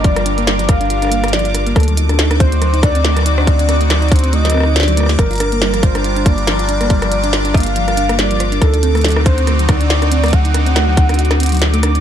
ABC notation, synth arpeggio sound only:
X:1
M:4/4
L:1/16
Q:"Swing 16ths" 1/4=140
K:Gm
V:1 name="Synth arpeggio sound"
F, F D B, G, F, F D F D B, G, F, F D B, | A, ^F, E D E D C A, F, E D C A, F, E D | E D C A, ^F, E D C A, F, C E D F, A, A, | F, F D B, G, F, F D F D B, G, F, F D B, |
G, F, F D F D B, G, F, F D B, G, F, F D | E D C A, ^F, E D C A, F, E D E D C A, | ^F, E D C A, F, E D E D C F, ^F A, D D |]